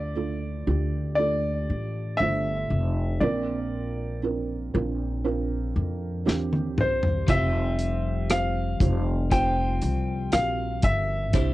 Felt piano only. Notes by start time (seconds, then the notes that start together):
Already playing: D3 A3 D4 F4 A4
0.15 A3 D4 F4 A4
0.67 A3 D4 F4 G4
1.18 A3 D4 F4 A4
2.20 A3 D4 F4 C5
3.22 A#2 C4 D4 F4 A#4
4.23 C4 D4 F4 A#4
4.74 C4 D4 F4 A#4
5.24 C4 D4 F4 A#4
6.26 C4 D4 F4 G4
7.29 C4 F4 G4 C5
8.30 C4 F4 G4 C5
8.81 C4 F4 G4 C5
9.31 C4 F4 G4 C5
10.32 C4 F4 F#4 A#4
10.40 G4
11.33 C3 D4 E4 G4 C5